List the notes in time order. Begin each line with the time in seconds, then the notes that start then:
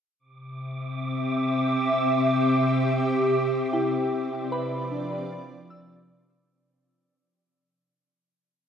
0.19 C3 D6
0.44 C4 E5
1.60 G4
3.73 E4 G5
4.13 D5
4.38 F3
4.52 B4 B5
4.91 D4
5.70 E6